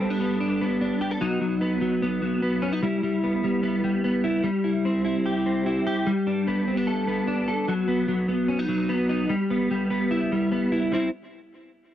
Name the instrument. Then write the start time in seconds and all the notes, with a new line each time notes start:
clean electric guitar
Already playing: G3 B3 A4
0.00 C4
0.10 D4
0.20 B3
0.40 D4
0.61 B3
0.81 D4
1.01 G4
1.11 A4
1.21 F#3 D#4
1.41 F#3
1.61 B3
1.81 F#3
2.02 B3
2.22 F#3
2.42 B3
2.62 C#4
2.73 D#4
2.83 G3 E4
3.03 G3
3.24 B3
3.44 G3
3.63 B3
3.84 G3
4.04 B3
4.24 E4
4.43 G3
4.64 E4
4.85 C4
5.05 E4
5.26 G4
5.46 C4
5.66 E4
5.87 G4
6.06 G3
6.27 D4
6.47 B3
6.67 C4
6.77 D4
6.87 A4
7.07 B3
7.27 D4
7.48 A4
7.68 F#3
7.88 B3
8.08 F#3
8.28 B3
8.48 C#4
8.59 D#4
8.69 F#3
8.89 B3
9.09 D#4
9.29 G3
9.50 B3
9.71 G3
9.90 B3
10.11 E4
10.32 G3
10.52 B3
10.72 E4
10.92 G3 C4 E4